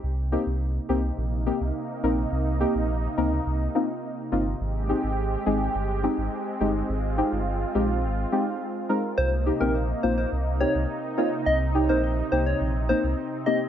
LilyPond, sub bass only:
\new Staff \with { instrumentName = "Sub bass" } { \clef bass \time 4/4 \key c \minor \tempo 4 = 105 c,8. c,8. c,8 bes,,8. c,16 r8 bes,,8 | c,8. bes,,8. des,8 c,8 r4 g,,8 | aes,,8. aes,,8. aes,,8 g,,8. aes,,16 r8 g,,8 | aes,,8. g,,8. bes,,8 aes,,8 r4. |
c,8. bes,,8. bes,,8 c,8. c,16 r4 | c,8. bes,,8. c,8 bes,,8. c,16 r4 | }